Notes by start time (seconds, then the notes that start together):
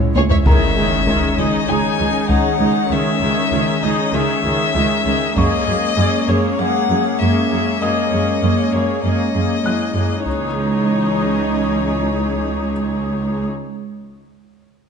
Already playing: C#2 G#3 C#4 E4 C#5 F#5
0.00 taiko low-mid
0.15 C#2 G#4 C#5, taiko high
0.30 C#2 C#5 E5, taiko low
0.46 C#2 D#3 G#3 C#4 G#4 A#4 C#5 E5 A#5, taiko, impact
0.77 C#2 D#3 G#4
1.07 C#2 D#3 G#4, taiko
1.37 C#2 D#4 G#4 D#5
1.68 C#2 D#4 G#4 G#5
1.99 C#2 D#4 G#4
2.29 C#2 D#4 G#4 F#5, taiko
2.60 C#2 D#4 G#4
2.90 C#2 D#3 G#4 E5
3.21 C#2 D#3 G#4
3.52 C#2 D#3 G#4
3.83 C#2 D#4 G#4 D#5
4.13 C#2 D#3 G#4 E5
4.44 C#2 D#3 G#4
4.75 C#2 D#3 G#4
5.05 C#2 D#3 G#4
5.36 F#2 G#3 A#3 C#4 G#4 C#5 D#5 C#6, taiko
5.67 F#2 A#3 G#4
5.97 F#2 A#3 G#4
6.28 F#2 A#3 G#4 C#5
6.59 F#2 A#3 G#4 F#5
6.89 F#2 A#3 G#4
7.20 F#2 A#3 G#4 E5
7.51 F#2 A#3 G#4
7.81 F#2 A#3 G#4 D#5 D#6
8.12 F#2 A#3 G#4
8.42 F#2 A#3 G#4
8.73 F#2 A#3 G#4 C#5
9.04 F#2 A#3 G#4 D#5
9.34 F#2 A#3 G#4
9.65 F#2 A#3 E4 G#4 F#6
9.95 F#2 A#3 G#4
10.25 C#2 E3 G#3 C#4 D#4 G#4 C#5 D#5, taiko